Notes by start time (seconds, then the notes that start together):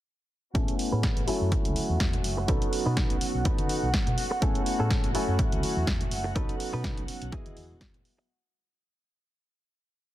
0.54 A1 A3 B3 C#4 E4 F#4 G#4 A4 F#5 G#5, kick, closed hi-hat
0.68 closed hi-hat
0.79 open hi-hat, tambourine
0.92 A2 C#4 G#4 B4, tambourine
1.03 kick, snare, closed hi-hat
1.17 A1, closed hi-hat
1.27 F#3 A3 C#4 E4 F#4 A4 G#5, muted fingered electric bass stroke, open hi-hat
1.41 F#2, tambourine
1.52 muted fingered electric bass stroke, kick, closed hi-hat, tambourine, low conga
1.64 C#2, closed hi-hat, tambourine, high conga
1.76 open hi-hat, tambourine
1.89 E2, tambourine
2.00 E2, kick, snare, closed hi-hat
2.13 closed hi-hat, low conga
2.24 F#1, open hi-hat, tambourine
2.37 muted clean electric guitar stroke
2.48 B1 F#3 B3 C#4 D#4 A4 B4, kick, closed hi-hat
2.62 closed hi-hat
2.73 open hi-hat, tambourine
2.86 B2 D#4 A4 B4
2.97 kick, snare, closed hi-hat
3.10 B1, closed hi-hat
3.20 muted fingered electric bass stroke, open hi-hat, tambourine
3.34 B1, tambourine
3.45 D#4 A4 B4, kick, closed hi-hat, tambourine, low conga
3.58 closed hi-hat, tambourine, high conga
3.69 open hi-hat, tambourine
3.83 B1
3.94 kick, snare, closed hi-hat
4.07 B2, closed hi-hat, low conga
4.18 open hi-hat, tambourine
4.31 muted clean electric guitar stroke, tambourine
4.41 A1 A3 B3 C#4 E4 G#4 A4 G#5, kick, closed hi-hat
4.55 closed hi-hat
4.66 open hi-hat, tambourine
4.79 A2 C#4 G#4 A4
4.91 kick, snare, closed hi-hat
5.04 A1, closed hi-hat
5.14 F#3 A3 C#4 E4 F#4 A4 G#5, muted fingered electric bass stroke, open hi-hat, tambourine
5.28 F#2, tambourine
5.39 muted fingered electric bass stroke, kick, closed hi-hat, tambourine, low conga
5.52 C#2, closed hi-hat, tambourine, high conga
5.63 open hi-hat, tambourine
5.76 E2, tambourine
5.87 E2, kick, snare, closed hi-hat
6.01 closed hi-hat, low conga
6.11 F#1, open hi-hat, tambourine
6.24 muted clean electric guitar stroke, tambourine
6.35 B1 F#3 B3 C#4 D#4 A4 B4, kick, closed hi-hat
6.49 closed hi-hat
6.60 open hi-hat, tambourine
6.73 B2 D#4 A4 B4, tambourine
6.84 kick, snare, closed hi-hat
6.97 B1, closed hi-hat
7.08 muted fingered electric bass stroke, open hi-hat, tambourine
7.21 B1, closed hi-hat, tambourine
7.32 F#3 B3 E4 G#4 D#5, kick, closed hi-hat, tambourine, low conga
7.46 muted fingered electric bass stroke, closed hi-hat, tambourine, high conga
7.57 E2, open hi-hat, tambourine
7.70 E1, tambourine
7.81 kick, snare, closed hi-hat
7.94 closed hi-hat, tambourine, low conga
8.05 open hi-hat, tambourine
8.18 muted clean electric guitar stroke, tambourine